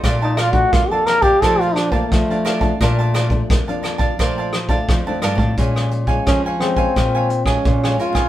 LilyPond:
<<
  \new Staff \with { instrumentName = "Cavaquinho" } { \time 4/4 \key bes \major \tempo 4 = 87 <bes' d'' f'' a''>16 <d'' f'' a''>16 <bes' d'' f'' a''>16 r8 <d'' f'' a''>16 <bes' d'' f'' a''>16 <d'' f'' a''>16 <bes' d'' f'' a''>16 <d'' f'' a''>16 r16 <d'' f'' a''>8 <d'' f'' a''>16 <bes' d'' f'' a''>16 <d'' f'' a''>16 | <bes' d'' f'' a''>16 <d'' f'' a''>16 <bes' d'' f'' a''>16 r8 <d'' f'' a''>16 <bes' d'' f'' a''>16 <d'' f'' a''>16 <bes' d'' f'' a''>16 <d'' f'' a''>16 r16 <d'' f'' a''>8 <d'' f'' a''>16 <bes' d'' f'' a''>16 <d'' f'' a''>16 | \key bes \minor <bes' des'' f'' aes''>8 r16 <des'' f'' aes''>16 <bes' des'' f'' aes''>16 <des'' f'' aes''>8 <des'' f'' aes''>16 <bes' des'' f'' aes''>16 <des'' f'' aes''>16 r16 <des'' f'' aes''>8 <des'' f'' aes''>16 <bes' des'' f'' aes''>16 <des'' f'' aes''>16 | }
  \new Staff \with { instrumentName = "Trombone" } { \time 4/4 \key bes \major r16 ees'16 f'16 ges'16 f'16 a'16 bes'16 g'16 a'16 f'16 d'16 bes16 a4 | r1 | \key bes \minor r4 des'8 c'4~ c'16 des'8. f'8 | }
  \new Staff \with { instrumentName = "Nylon-string guitar" } { \clef bass \time 4/4 \key bes \major << { <f a d'>8. <f a d'>8 <f d'>8. <f a d'>8 r16 <f a d'>8 <f a d'>8 <f a d'>16 | <f a d'>8. <f a d'>8 <f d'>8. <f a d'>8 r16 <f a d'>8 <f a d'>8. | \key bes \minor <f aes des'>8. <f aes des'>8. <f aes des'>8 <f aes>8 r16 <f aes des'>8 <f aes des'>8. | } \\ { bes,4 f,4 bes,4 f,4 | bes,4 f,4 bes,4 f,4 | bes,4 f,4 bes,4 f,4 | } >> }
  \new Staff \with { instrumentName = "Nylon-string guitar" } { \clef bass \time 4/4 \key bes \major bes,4 bes4 f4 f4 | bes,4 bes4 f4 f16 f,16 g,16 a,16 | \key bes \minor bes,4 f4 bes,4 bes,8 r16 c16 | }
  \new DrumStaff \with { instrumentName = "Drums" } \drummode { \time 4/4 <hh bd ss>8 <hh ss>16 bd16 <hh bd ss>8 <hh ss>16 bd16 <hh bd ss>16 hh16 <hh ss>16 bd16 <hh bd ss>16 hh16 <hh ss>16 <hh bd>16 | <hh bd ss>16 hh16 <hh ss>16 bd16 <hh bd ss>16 hh16 <hh ss>16 <hh bd>16 <hh bd ss>8 <hh ss>16 <hh bd>16 <hh bd ss>8 <hh ss>16 bd16 | <hh bd>16 ss16 hh16 bd16 <hh bd ss>8 <hh ss>16 bd16 <hh bd ss>8 hh16 <bd ss>16 <hh bd>16 ss16 hh16 <hh bd ss>16 | }
>>